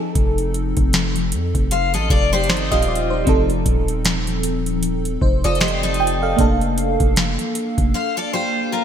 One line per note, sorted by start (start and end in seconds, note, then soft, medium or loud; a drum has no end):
0.00 2.83 F3 medium
0.00 2.84 C4 medium
0.00 2.45 D#4 medium
0.00 2.49 A4 medium
0.15 0.74 F1 loud
0.15 kick loud
0.15 closed hi-hat medium
0.38 closed hi-hat soft
0.54 closed hi-hat medium
0.77 1.35 F1 loud
0.77 kick loud
0.77 closed hi-hat medium
0.93 snare loud
0.93 closed hi-hat medium
1.16 closed hi-hat soft
1.32 1.54 F2 medium
1.32 closed hi-hat medium
1.55 1.96 F1 loud
1.55 kick medium
1.55 closed hi-hat medium
1.71 1.93 C5 medium
1.71 1.93 F5 medium
1.71 closed hi-hat medium
1.94 2.10 A1 loud
1.94 2.10 A4 medium
1.94 2.09 D#5 medium
1.94 closed hi-hat medium
2.10 2.51 F1 loud
2.10 2.32 A4 medium
2.10 2.32 D5 medium
2.10 kick loud
2.33 2.48 G4 medium
2.33 2.48 C5 medium
2.33 closed hi-hat soft
2.44 closed hi-hat soft
2.49 2.71 G1 loud
2.49 2.71 D#4 medium
2.49 2.70 A4 medium
2.49 2.70 C5 medium
2.49 snare loud
2.57 closed hi-hat soft
2.71 3.25 D#1 loud
2.71 3.24 C4 medium
2.71 3.24 F4 medium
2.71 2.87 G4 medium
2.71 2.87 D#5 medium
2.71 kick medium
2.71 closed hi-hat medium
2.82 closed hi-hat medium
2.88 3.10 F4 medium
2.88 3.09 D5 medium
2.95 closed hi-hat medium
3.10 3.26 D#4 medium
3.10 3.47 C5 medium
3.25 3.64 F1 loud
3.25 6.33 F3 medium
3.25 6.34 C4 medium
3.25 5.18 D#4 medium
3.25 kick loud
3.25 closed hi-hat medium
3.29 5.19 A4 medium
3.50 closed hi-hat soft
3.66 5.18 D#1 loud
3.66 kick loud
3.66 closed hi-hat medium
3.88 closed hi-hat medium
4.05 snare loud
4.05 closed hi-hat medium
4.27 closed hi-hat soft
4.43 closed hi-hat medium
4.66 closed hi-hat soft
4.83 closed hi-hat medium
5.05 closed hi-hat medium
5.21 5.43 F1 loud
5.21 5.44 D#4 medium
5.21 5.43 C5 medium
5.21 kick loud
5.44 6.35 F1 loud
5.44 5.60 F4 medium
5.44 5.60 A4 medium
5.44 5.60 D5 medium
5.44 5.60 D#5 medium
5.44 closed hi-hat soft
5.55 closed hi-hat medium
5.60 5.82 G4 medium
5.60 5.98 G4 medium
5.60 5.82 C5 medium
5.60 5.98 D#5 medium
5.60 snare loud
5.68 closed hi-hat medium
5.83 6.36 D#4 medium
5.83 6.36 A4 medium
5.83 closed hi-hat medium
5.94 closed hi-hat medium
6.00 6.21 G5 medium
6.07 closed hi-hat medium
6.22 6.39 A4 medium
6.22 6.59 F5 medium
6.36 6.98 F1 loud
6.36 8.84 A#3 medium
6.36 8.84 D4 medium
6.36 kick loud
6.36 closed hi-hat medium
6.40 8.84 A4 medium
6.61 closed hi-hat soft
6.78 closed hi-hat medium
7.00 7.38 F1 loud
7.00 kick loud
7.00 closed hi-hat medium
7.16 snare loud
7.16 closed hi-hat medium
7.39 closed hi-hat soft
7.55 closed hi-hat medium
7.78 7.94 F1 loud
7.78 kick medium
7.78 closed hi-hat medium
7.94 8.16 C5 medium
7.94 8.16 F5 medium
8.17 8.33 A4 medium
8.17 8.32 D5 medium
8.33 8.71 G4 medium
8.33 8.70 C5 medium
8.72 8.84 F4 medium
8.72 8.84 A#4 medium